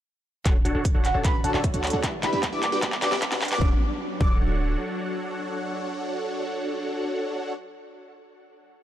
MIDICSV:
0, 0, Header, 1, 7, 480
1, 0, Start_track
1, 0, Key_signature, 2, "major"
1, 0, Tempo, 394737
1, 554, Time_signature, 4, 2, 24, 8
1, 10738, End_track
2, 0, Start_track
2, 0, Title_t, "Soft synth lead"
2, 0, Program_c, 0, 80
2, 1273, Note_on_c, 0, 78, 91
2, 1416, Note_off_c, 0, 78, 0
2, 1516, Note_on_c, 0, 83, 97
2, 1658, Note_off_c, 0, 83, 0
2, 1753, Note_on_c, 0, 81, 93
2, 1831, Note_off_c, 0, 81, 0
2, 1876, Note_on_c, 0, 81, 75
2, 1952, Note_off_c, 0, 81, 0
2, 2713, Note_on_c, 0, 83, 85
2, 2790, Note_off_c, 0, 83, 0
2, 2836, Note_on_c, 0, 83, 75
2, 2912, Note_off_c, 0, 83, 0
2, 3074, Note_on_c, 0, 86, 94
2, 3170, Note_off_c, 0, 86, 0
2, 3193, Note_on_c, 0, 86, 87
2, 3271, Note_off_c, 0, 86, 0
2, 3313, Note_on_c, 0, 86, 79
2, 3390, Note_off_c, 0, 86, 0
2, 3673, Note_on_c, 0, 86, 97
2, 3816, Note_off_c, 0, 86, 0
2, 4274, Note_on_c, 0, 86, 89
2, 4351, Note_off_c, 0, 86, 0
2, 4392, Note_on_c, 0, 86, 75
2, 4470, Note_off_c, 0, 86, 0
2, 5116, Note_on_c, 0, 86, 76
2, 5259, Note_off_c, 0, 86, 0
2, 10738, End_track
3, 0, Start_track
3, 0, Title_t, "Supersaw synth"
3, 0, Program_c, 1, 81
3, 550, Note_on_c, 1, 62, 76
3, 551, Note_on_c, 1, 66, 73
3, 551, Note_on_c, 1, 69, 74
3, 551, Note_on_c, 1, 73, 73
3, 551, Note_on_c, 1, 78, 89
3, 665, Note_off_c, 1, 62, 0
3, 665, Note_off_c, 1, 66, 0
3, 665, Note_off_c, 1, 69, 0
3, 665, Note_off_c, 1, 73, 0
3, 665, Note_off_c, 1, 78, 0
3, 788, Note_on_c, 1, 66, 93
3, 788, Note_on_c, 1, 73, 90
3, 788, Note_on_c, 1, 78, 108
3, 789, Note_on_c, 1, 62, 99
3, 789, Note_on_c, 1, 69, 91
3, 883, Note_off_c, 1, 62, 0
3, 883, Note_off_c, 1, 66, 0
3, 883, Note_off_c, 1, 69, 0
3, 883, Note_off_c, 1, 73, 0
3, 883, Note_off_c, 1, 78, 0
3, 909, Note_on_c, 1, 62, 91
3, 909, Note_on_c, 1, 66, 76
3, 909, Note_on_c, 1, 69, 79
3, 909, Note_on_c, 1, 78, 97
3, 910, Note_on_c, 1, 73, 78
3, 1024, Note_off_c, 1, 62, 0
3, 1024, Note_off_c, 1, 66, 0
3, 1024, Note_off_c, 1, 69, 0
3, 1024, Note_off_c, 1, 73, 0
3, 1024, Note_off_c, 1, 78, 0
3, 1149, Note_on_c, 1, 69, 91
3, 1150, Note_on_c, 1, 66, 91
3, 1150, Note_on_c, 1, 78, 112
3, 1151, Note_on_c, 1, 62, 100
3, 1151, Note_on_c, 1, 73, 92
3, 1264, Note_off_c, 1, 66, 0
3, 1264, Note_off_c, 1, 69, 0
3, 1264, Note_off_c, 1, 78, 0
3, 1265, Note_off_c, 1, 62, 0
3, 1265, Note_off_c, 1, 73, 0
3, 1389, Note_on_c, 1, 81, 82
3, 1390, Note_on_c, 1, 62, 72
3, 1390, Note_on_c, 1, 66, 69
3, 1390, Note_on_c, 1, 69, 72
3, 1390, Note_on_c, 1, 73, 69
3, 1493, Note_off_c, 1, 81, 0
3, 1494, Note_off_c, 1, 62, 0
3, 1494, Note_off_c, 1, 66, 0
3, 1494, Note_off_c, 1, 69, 0
3, 1494, Note_off_c, 1, 73, 0
3, 1508, Note_on_c, 1, 69, 77
3, 1509, Note_on_c, 1, 62, 78
3, 1509, Note_on_c, 1, 66, 77
3, 1509, Note_on_c, 1, 73, 78
3, 1509, Note_on_c, 1, 78, 87
3, 1624, Note_off_c, 1, 62, 0
3, 1624, Note_off_c, 1, 66, 0
3, 1624, Note_off_c, 1, 69, 0
3, 1624, Note_off_c, 1, 73, 0
3, 1624, Note_off_c, 1, 78, 0
3, 1750, Note_on_c, 1, 78, 97
3, 1751, Note_on_c, 1, 62, 90
3, 1751, Note_on_c, 1, 66, 83
3, 1751, Note_on_c, 1, 69, 79
3, 1751, Note_on_c, 1, 73, 80
3, 1843, Note_off_c, 1, 78, 0
3, 1844, Note_off_c, 1, 62, 0
3, 1844, Note_off_c, 1, 66, 0
3, 1844, Note_off_c, 1, 69, 0
3, 1844, Note_off_c, 1, 73, 0
3, 1871, Note_on_c, 1, 69, 80
3, 1872, Note_on_c, 1, 66, 80
3, 1872, Note_on_c, 1, 73, 81
3, 1872, Note_on_c, 1, 76, 100
3, 1873, Note_on_c, 1, 62, 87
3, 2084, Note_off_c, 1, 66, 0
3, 2084, Note_off_c, 1, 69, 0
3, 2084, Note_off_c, 1, 73, 0
3, 2084, Note_off_c, 1, 76, 0
3, 2085, Note_off_c, 1, 62, 0
3, 2110, Note_on_c, 1, 78, 109
3, 2111, Note_on_c, 1, 69, 89
3, 2111, Note_on_c, 1, 73, 86
3, 2112, Note_on_c, 1, 62, 97
3, 2112, Note_on_c, 1, 66, 87
3, 2324, Note_off_c, 1, 62, 0
3, 2324, Note_off_c, 1, 66, 0
3, 2324, Note_off_c, 1, 69, 0
3, 2324, Note_off_c, 1, 73, 0
3, 2324, Note_off_c, 1, 78, 0
3, 2350, Note_on_c, 1, 78, 91
3, 2351, Note_on_c, 1, 62, 81
3, 2351, Note_on_c, 1, 66, 74
3, 2351, Note_on_c, 1, 69, 74
3, 2351, Note_on_c, 1, 73, 74
3, 2454, Note_off_c, 1, 62, 0
3, 2454, Note_off_c, 1, 66, 0
3, 2454, Note_off_c, 1, 69, 0
3, 2454, Note_off_c, 1, 73, 0
3, 2454, Note_off_c, 1, 78, 0
3, 2470, Note_on_c, 1, 64, 74
3, 2471, Note_on_c, 1, 71, 71
3, 2471, Note_on_c, 1, 76, 87
3, 2585, Note_off_c, 1, 64, 0
3, 2585, Note_off_c, 1, 71, 0
3, 2585, Note_off_c, 1, 76, 0
3, 2708, Note_on_c, 1, 64, 92
3, 2708, Note_on_c, 1, 71, 92
3, 2709, Note_on_c, 1, 62, 97
3, 2709, Note_on_c, 1, 67, 95
3, 2709, Note_on_c, 1, 76, 111
3, 2803, Note_off_c, 1, 62, 0
3, 2803, Note_off_c, 1, 64, 0
3, 2803, Note_off_c, 1, 67, 0
3, 2803, Note_off_c, 1, 71, 0
3, 2803, Note_off_c, 1, 76, 0
3, 2829, Note_on_c, 1, 62, 90
3, 2829, Note_on_c, 1, 64, 82
3, 2829, Note_on_c, 1, 71, 81
3, 2829, Note_on_c, 1, 76, 99
3, 2830, Note_on_c, 1, 67, 83
3, 2943, Note_off_c, 1, 62, 0
3, 2943, Note_off_c, 1, 64, 0
3, 2944, Note_off_c, 1, 67, 0
3, 2944, Note_off_c, 1, 71, 0
3, 2944, Note_off_c, 1, 76, 0
3, 3070, Note_on_c, 1, 67, 92
3, 3070, Note_on_c, 1, 71, 93
3, 3071, Note_on_c, 1, 62, 99
3, 3071, Note_on_c, 1, 64, 88
3, 3071, Note_on_c, 1, 76, 109
3, 3178, Note_off_c, 1, 62, 0
3, 3178, Note_off_c, 1, 64, 0
3, 3178, Note_off_c, 1, 67, 0
3, 3178, Note_off_c, 1, 71, 0
3, 3178, Note_off_c, 1, 76, 0
3, 3309, Note_on_c, 1, 71, 72
3, 3310, Note_on_c, 1, 79, 87
3, 3311, Note_on_c, 1, 62, 76
3, 3311, Note_on_c, 1, 66, 69
3, 3311, Note_on_c, 1, 67, 72
3, 3414, Note_off_c, 1, 62, 0
3, 3414, Note_off_c, 1, 66, 0
3, 3414, Note_off_c, 1, 67, 0
3, 3414, Note_off_c, 1, 71, 0
3, 3414, Note_off_c, 1, 79, 0
3, 3431, Note_on_c, 1, 66, 75
3, 3431, Note_on_c, 1, 67, 76
3, 3432, Note_on_c, 1, 78, 89
3, 3545, Note_off_c, 1, 66, 0
3, 3545, Note_off_c, 1, 67, 0
3, 3545, Note_off_c, 1, 78, 0
3, 3670, Note_on_c, 1, 67, 84
3, 3671, Note_on_c, 1, 62, 91
3, 3671, Note_on_c, 1, 71, 85
3, 3671, Note_on_c, 1, 78, 98
3, 3672, Note_on_c, 1, 66, 85
3, 3764, Note_off_c, 1, 62, 0
3, 3764, Note_off_c, 1, 66, 0
3, 3764, Note_off_c, 1, 67, 0
3, 3764, Note_off_c, 1, 71, 0
3, 3764, Note_off_c, 1, 78, 0
3, 3791, Note_on_c, 1, 62, 87
3, 3791, Note_on_c, 1, 67, 82
3, 3791, Note_on_c, 1, 76, 96
3, 3792, Note_on_c, 1, 66, 82
3, 3793, Note_on_c, 1, 71, 80
3, 4004, Note_off_c, 1, 62, 0
3, 4004, Note_off_c, 1, 67, 0
3, 4004, Note_off_c, 1, 76, 0
3, 4005, Note_off_c, 1, 66, 0
3, 4005, Note_off_c, 1, 71, 0
3, 4031, Note_on_c, 1, 66, 91
3, 4032, Note_on_c, 1, 62, 100
3, 4032, Note_on_c, 1, 67, 87
3, 4032, Note_on_c, 1, 71, 94
3, 4032, Note_on_c, 1, 78, 107
3, 4244, Note_off_c, 1, 66, 0
3, 4244, Note_off_c, 1, 67, 0
3, 4244, Note_off_c, 1, 71, 0
3, 4244, Note_off_c, 1, 78, 0
3, 4245, Note_off_c, 1, 62, 0
3, 4273, Note_on_c, 1, 66, 73
3, 4274, Note_on_c, 1, 62, 84
3, 4274, Note_on_c, 1, 67, 75
3, 4274, Note_on_c, 1, 71, 73
3, 4274, Note_on_c, 1, 78, 86
3, 4375, Note_off_c, 1, 66, 0
3, 4376, Note_off_c, 1, 62, 0
3, 4376, Note_off_c, 1, 67, 0
3, 4376, Note_off_c, 1, 71, 0
3, 4376, Note_off_c, 1, 78, 0
3, 4389, Note_on_c, 1, 69, 80
3, 4389, Note_on_c, 1, 78, 98
3, 4390, Note_on_c, 1, 62, 88
3, 4390, Note_on_c, 1, 66, 81
3, 4390, Note_on_c, 1, 73, 82
3, 4525, Note_off_c, 1, 69, 0
3, 4526, Note_off_c, 1, 62, 0
3, 4526, Note_off_c, 1, 66, 0
3, 4526, Note_off_c, 1, 73, 0
3, 4526, Note_off_c, 1, 78, 0
3, 5112, Note_on_c, 1, 62, 87
3, 5112, Note_on_c, 1, 66, 78
3, 5112, Note_on_c, 1, 73, 79
3, 5112, Note_on_c, 1, 78, 95
3, 5113, Note_on_c, 1, 69, 79
3, 9157, Note_off_c, 1, 62, 0
3, 9157, Note_off_c, 1, 66, 0
3, 9157, Note_off_c, 1, 73, 0
3, 9157, Note_off_c, 1, 78, 0
3, 9158, Note_off_c, 1, 69, 0
3, 10738, End_track
4, 0, Start_track
4, 0, Title_t, "Analog synth pad"
4, 0, Program_c, 2, 89
4, 554, Note_on_c, 2, 50, 78
4, 554, Note_on_c, 2, 61, 75
4, 554, Note_on_c, 2, 66, 90
4, 2455, Note_off_c, 2, 50, 0
4, 2455, Note_off_c, 2, 61, 0
4, 2455, Note_off_c, 2, 66, 0
4, 2472, Note_on_c, 2, 55, 91
4, 2473, Note_on_c, 2, 62, 71
4, 2474, Note_on_c, 2, 52, 75
4, 3186, Note_off_c, 2, 62, 0
4, 3187, Note_off_c, 2, 52, 0
4, 3194, Note_on_c, 2, 59, 72
4, 3195, Note_on_c, 2, 54, 78
4, 4374, Note_off_c, 2, 55, 0
4, 4380, Note_off_c, 2, 54, 0
4, 4382, Note_off_c, 2, 59, 0
4, 4393, Note_on_c, 2, 62, 77
4, 4394, Note_on_c, 2, 54, 83
4, 4394, Note_on_c, 2, 73, 96
4, 8464, Note_off_c, 2, 62, 0
4, 8465, Note_off_c, 2, 54, 0
4, 8465, Note_off_c, 2, 73, 0
4, 10738, End_track
5, 0, Start_track
5, 0, Title_t, "808-style bass"
5, 0, Program_c, 3, 38
5, 553, Note_on_c, 3, 26, 92
5, 770, Note_off_c, 3, 26, 0
5, 793, Note_on_c, 3, 26, 97
5, 890, Note_off_c, 3, 26, 0
5, 914, Note_on_c, 3, 26, 90
5, 1130, Note_off_c, 3, 26, 0
5, 1155, Note_on_c, 3, 26, 98
5, 1371, Note_off_c, 3, 26, 0
5, 1395, Note_on_c, 3, 26, 99
5, 1491, Note_off_c, 3, 26, 0
5, 1513, Note_on_c, 3, 26, 100
5, 1730, Note_off_c, 3, 26, 0
5, 1755, Note_on_c, 3, 26, 97
5, 1851, Note_off_c, 3, 26, 0
5, 1873, Note_on_c, 3, 26, 98
5, 2090, Note_off_c, 3, 26, 0
5, 2113, Note_on_c, 3, 38, 99
5, 2330, Note_off_c, 3, 38, 0
5, 2353, Note_on_c, 3, 38, 100
5, 2449, Note_off_c, 3, 38, 0
5, 2473, Note_on_c, 3, 28, 99
5, 2690, Note_off_c, 3, 28, 0
5, 2714, Note_on_c, 3, 28, 95
5, 2811, Note_off_c, 3, 28, 0
5, 2834, Note_on_c, 3, 40, 97
5, 3074, Note_on_c, 3, 28, 103
5, 3092, Note_off_c, 3, 40, 0
5, 3314, Note_on_c, 3, 31, 100
5, 3332, Note_off_c, 3, 28, 0
5, 3410, Note_off_c, 3, 31, 0
5, 3435, Note_on_c, 3, 31, 100
5, 3650, Note_off_c, 3, 31, 0
5, 3674, Note_on_c, 3, 31, 99
5, 3770, Note_off_c, 3, 31, 0
5, 3795, Note_on_c, 3, 31, 99
5, 4011, Note_off_c, 3, 31, 0
5, 4034, Note_on_c, 3, 43, 100
5, 4250, Note_off_c, 3, 43, 0
5, 4274, Note_on_c, 3, 31, 104
5, 4370, Note_off_c, 3, 31, 0
5, 4395, Note_on_c, 3, 26, 98
5, 4529, Note_off_c, 3, 26, 0
5, 5114, Note_on_c, 3, 26, 94
5, 5785, Note_off_c, 3, 26, 0
5, 10738, End_track
6, 0, Start_track
6, 0, Title_t, "Riser"
6, 0, Program_c, 4, 103
6, 552, Note_on_c, 4, 60, 76
6, 4393, Note_off_c, 4, 60, 0
6, 10738, End_track
7, 0, Start_track
7, 0, Title_t, "Drums"
7, 553, Note_on_c, 9, 36, 94
7, 553, Note_on_c, 9, 39, 49
7, 553, Note_on_c, 9, 42, 83
7, 674, Note_off_c, 9, 36, 0
7, 674, Note_off_c, 9, 39, 0
7, 674, Note_off_c, 9, 42, 0
7, 793, Note_on_c, 9, 42, 73
7, 915, Note_off_c, 9, 42, 0
7, 1033, Note_on_c, 9, 36, 91
7, 1034, Note_on_c, 9, 42, 84
7, 1155, Note_off_c, 9, 36, 0
7, 1156, Note_off_c, 9, 42, 0
7, 1272, Note_on_c, 9, 39, 55
7, 1272, Note_on_c, 9, 42, 63
7, 1394, Note_off_c, 9, 39, 0
7, 1394, Note_off_c, 9, 42, 0
7, 1513, Note_on_c, 9, 36, 97
7, 1513, Note_on_c, 9, 39, 59
7, 1513, Note_on_c, 9, 42, 81
7, 1635, Note_off_c, 9, 36, 0
7, 1635, Note_off_c, 9, 39, 0
7, 1635, Note_off_c, 9, 42, 0
7, 1753, Note_on_c, 9, 42, 72
7, 1873, Note_on_c, 9, 39, 57
7, 1874, Note_off_c, 9, 42, 0
7, 1992, Note_on_c, 9, 42, 80
7, 1994, Note_on_c, 9, 36, 100
7, 1995, Note_off_c, 9, 39, 0
7, 2113, Note_off_c, 9, 42, 0
7, 2113, Note_on_c, 9, 42, 64
7, 2115, Note_off_c, 9, 36, 0
7, 2233, Note_off_c, 9, 42, 0
7, 2233, Note_on_c, 9, 39, 66
7, 2233, Note_on_c, 9, 42, 50
7, 2273, Note_off_c, 9, 42, 0
7, 2273, Note_on_c, 9, 42, 69
7, 2313, Note_off_c, 9, 42, 0
7, 2313, Note_on_c, 9, 42, 84
7, 2355, Note_off_c, 9, 39, 0
7, 2435, Note_off_c, 9, 42, 0
7, 2474, Note_on_c, 9, 36, 95
7, 2474, Note_on_c, 9, 39, 75
7, 2474, Note_on_c, 9, 42, 85
7, 2595, Note_off_c, 9, 36, 0
7, 2595, Note_off_c, 9, 39, 0
7, 2595, Note_off_c, 9, 42, 0
7, 2713, Note_on_c, 9, 39, 83
7, 2713, Note_on_c, 9, 42, 71
7, 2834, Note_off_c, 9, 39, 0
7, 2834, Note_off_c, 9, 42, 0
7, 2953, Note_on_c, 9, 39, 89
7, 2953, Note_on_c, 9, 42, 83
7, 2954, Note_on_c, 9, 36, 98
7, 3074, Note_off_c, 9, 39, 0
7, 3074, Note_off_c, 9, 42, 0
7, 3075, Note_off_c, 9, 36, 0
7, 3193, Note_on_c, 9, 39, 88
7, 3193, Note_on_c, 9, 42, 63
7, 3315, Note_off_c, 9, 39, 0
7, 3315, Note_off_c, 9, 42, 0
7, 3433, Note_on_c, 9, 39, 88
7, 3433, Note_on_c, 9, 42, 79
7, 3434, Note_on_c, 9, 36, 104
7, 3554, Note_off_c, 9, 39, 0
7, 3554, Note_on_c, 9, 39, 84
7, 3555, Note_off_c, 9, 42, 0
7, 3556, Note_off_c, 9, 36, 0
7, 3674, Note_off_c, 9, 39, 0
7, 3674, Note_on_c, 9, 39, 98
7, 3674, Note_on_c, 9, 42, 70
7, 3794, Note_off_c, 9, 39, 0
7, 3794, Note_on_c, 9, 39, 85
7, 3795, Note_off_c, 9, 42, 0
7, 3913, Note_off_c, 9, 39, 0
7, 3913, Note_on_c, 9, 39, 99
7, 3913, Note_on_c, 9, 42, 77
7, 3914, Note_on_c, 9, 36, 100
7, 4033, Note_off_c, 9, 39, 0
7, 4033, Note_off_c, 9, 42, 0
7, 4033, Note_on_c, 9, 39, 90
7, 4033, Note_on_c, 9, 42, 61
7, 4036, Note_off_c, 9, 36, 0
7, 4153, Note_off_c, 9, 39, 0
7, 4153, Note_off_c, 9, 42, 0
7, 4153, Note_on_c, 9, 39, 102
7, 4153, Note_on_c, 9, 42, 48
7, 4194, Note_off_c, 9, 42, 0
7, 4194, Note_on_c, 9, 42, 64
7, 4234, Note_off_c, 9, 42, 0
7, 4234, Note_on_c, 9, 42, 83
7, 4274, Note_off_c, 9, 39, 0
7, 4276, Note_on_c, 9, 39, 94
7, 4356, Note_off_c, 9, 42, 0
7, 4395, Note_on_c, 9, 36, 108
7, 4397, Note_off_c, 9, 39, 0
7, 4516, Note_off_c, 9, 36, 0
7, 5115, Note_on_c, 9, 36, 115
7, 5236, Note_off_c, 9, 36, 0
7, 10738, End_track
0, 0, End_of_file